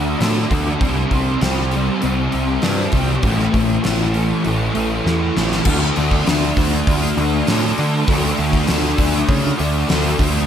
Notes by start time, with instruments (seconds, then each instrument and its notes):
Already playing: picked electric bass D2, distorted electric guitar D3 A3 D4
0.19 picked electric bass A2, distorted electric guitar D3 A3 D4, snare, open hi-hat
0.49 picked electric bass D2, distorted electric guitar A3 D4, kick, open hi-hat
0.79 picked electric bass C2, distorted electric guitar C3 G3 C4, kick, open hi-hat
1.11 picked electric bass C2, distorted electric guitar G3 C4, kick, open hi-hat
1.40 picked electric bass C2, distorted electric guitar C3 G3 C4, snare, open hi-hat
1.71 distorted electric guitar G3 C4, open hi-hat
2.01 picked electric bass C2, distorted electric guitar C3 G3 C4, open hi-hat
2.32 picked electric bass C2, distorted electric guitar G3 C4, open hi-hat
2.62 picked electric bass G2, distorted electric guitar C3 G3 C4, snare, open hi-hat
2.92 picked electric bass C2, distorted electric guitar C4, kick, open hi-hat
2.96 distorted electric guitar G3
3.23 picked electric bass A1, distorted electric guitar A2 E3 A3, kick, open hi-hat
3.40 snare
3.53 picked electric bass A1, distorted electric guitar E3 A3, kick, open hi-hat
3.83 picked electric bass A1, distorted electric guitar A2 E3 A3, snare, open hi-hat
4.14 distorted electric guitar E3 A3, open hi-hat
4.44 picked electric bass A1, distorted electric guitar A2 E3 A3, open hi-hat
4.73 picked electric bass A1, distorted electric guitar E3 A3, open hi-hat
5.05 picked electric bass E2, distorted electric guitar A2 E3 A3, snare
5.35 picked electric bass A1, distorted electric guitar E3 A3, snare
5.52 snare
5.65 picked electric bass D2, distorted electric guitar D3 A3 D4, kick, crash
5.96 picked electric bass D2, distorted electric guitar A3 D4, open hi-hat
6.11 kick
6.25 picked electric bass D2, distorted electric guitar D3 A3 D4, snare, open hi-hat
6.57 picked electric bass D2, kick, open hi-hat
6.87 picked electric bass D2, kick, open hi-hat
7.16 picked electric bass D2, distorted electric guitar A3 D4, open hi-hat
7.47 picked electric bass A2, distorted electric guitar D3 A3 D4, snare, open hi-hat
7.78 picked electric bass D3, distorted electric guitar A3 D4, open hi-hat
8.07 picked electric bass D2, distorted electric guitar D3 A3 D4, kick, open hi-hat
8.37 picked electric bass D2, distorted electric guitar A3 D4, open hi-hat
8.53 kick
8.67 picked electric bass D2, distorted electric guitar D3 A3 D4, snare, open hi-hat
8.98 picked electric bass D2, kick, open hi-hat
9.29 picked electric bass C#3, kick, open hi-hat
9.57 picked electric bass D2, distorted electric guitar A3 D4, open hi-hat
9.88 picked electric bass D2, distorted electric guitar D3 A3 D4, snare, open hi-hat
10.18 picked electric bass D2, distorted electric guitar A3 D4, kick, open hi-hat